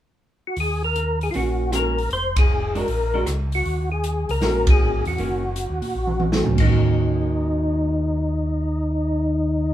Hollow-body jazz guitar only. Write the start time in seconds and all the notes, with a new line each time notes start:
1.35 D#3 A#3 C#4 F#4
1.72 D#3 A#3 C#4 F#4
2.75 G#3 D4 F#4
3.14 G#3 D4 F#4
4.42 D#3 A#3 C#4 F#4
5.19 D#3 A#3 C#4 F#4
6.33 D#3 A#3 C#4 F#4
6.56 D#3
6.60 A#3 C#4
6.67 F#4